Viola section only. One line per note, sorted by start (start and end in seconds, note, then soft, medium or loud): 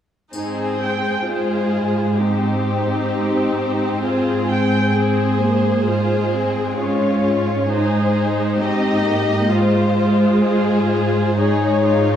0.33 1.23 C4 soft
0.33 0.77 D#4 soft
0.81 1.28 G5 soft
1.27 2.20 G#3 soft
1.27 2.20 F4 soft
2.20 4.94 C4 soft
2.20 2.64 D#4 soft
2.66 4.02 D#4 soft
4.05 4.50 F4 soft
4.50 4.95 G5 soft
4.96 5.40 C4 soft
4.96 5.86 G#4 soft
5.41 5.86 A#3 soft
5.86 7.68 G#3 soft
5.86 6.32 F4 soft
6.33 6.78 C4 soft
6.77 7.68 C#4 soft
7.69 8.58 G#3 soft
7.69 8.13 D#4 soft
8.15 9.49 D#4 soft
8.59 9.05 C4 soft
9.05 9.51 A#3 soft
9.50 11.37 G#3 soft
9.50 9.96 F4 soft
9.97 11.35 F4 soft
11.38 12.16 G#3 soft
11.38 12.16 D#4 soft